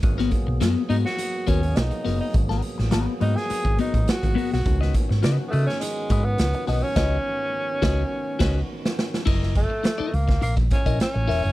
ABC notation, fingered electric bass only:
X:1
M:4/4
L:1/16
Q:1/4=104
K:F#mix
V:1 name="Fingered electric bass" clef=bass
G,,,2 z B,,, F,, z G,, z3 D,,2 B,,, z F,,, z | G,,,2 z =A,,, G,,, z G,, z2 G,,, z A,,, z G,,, z B,,, | C,,2 z G,, C, z C, z3 G,,2 C,, z B,,, z | C,,2 z4 C,,2 z2 C,,2 z4 |
F,,,3 z3 C,,2 A,,,2 z A,,, z =A,,, E,,, F,,, |]